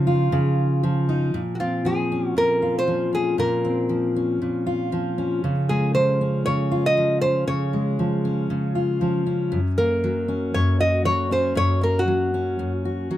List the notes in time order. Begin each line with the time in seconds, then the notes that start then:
Already playing: C#3 F3 D#4 F4
0.07 F4
0.32 C#3
0.83 F3
1.09 D#4
1.34 A#2
1.55 F#4
1.60 C4 F4
1.85 F3 G#4
2.12 C#4
2.37 A#2 A#4
2.62 F4
2.79 C5
2.88 F3
3.13 C#4 G#4
3.38 A#2 A#4
3.65 C4
3.89 F3
4.16 C#4
4.42 A#2
4.66 F4
4.92 F3
5.18 C#4
5.44 C#3
5.69 G#3 G#4
5.95 F3 C5
6.21 C#4
6.46 C#3 C#5
6.72 F4
6.86 D#5
6.97 F3
7.21 C#4 C5
7.47 C#3 C#5
7.73 G#3
7.99 F3
8.25 C#4
8.50 C#3
8.75 F4
9.01 F3
9.26 C#4
9.52 F#2
9.78 A#3 A#4
10.04 F#3
10.28 C#4
10.54 F#2 C#5
10.80 F#4 D#5
11.05 F#3 C#5
11.31 C#4 C5
11.55 F#2 C#5
11.81 A#3 A#4
11.99 F#4
12.08 F#3
12.34 C#4
12.59 F#2
12.85 F#4
13.11 F#3